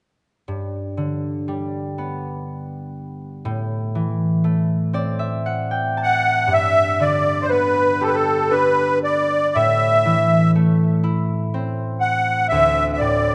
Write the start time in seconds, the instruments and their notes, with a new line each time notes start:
0.48 harp G2
0.97 harp D3
1.48 harp G3
1.98 harp B3
3.45 harp A2
3.95 harp E3
4.44 harp A3
4.93 harp C4 D5
5.19 harp E5
5.46 harp F#5
5.71 harp G5
5.97 harp A5
6.03 accordion F#5
6.47 harp G2
6.53 accordion E5
7.00 harp D3, accordion D5
7.42 accordion C5
7.49 harp B3, accordion B4
8.01 harp G4, accordion A4
8.07 accordion B4
8.14 accordion A4
8.50 harp D4, accordion B4
9.04 accordion D5
9.55 harp A2, accordion E5
10.05 harp E3
10.55 harp A3
11.03 harp E4
11.54 harp C4
12.01 accordion F#5
12.48 harp D2, accordion E5
12.93 accordion E5
12.98 harp A2, accordion D5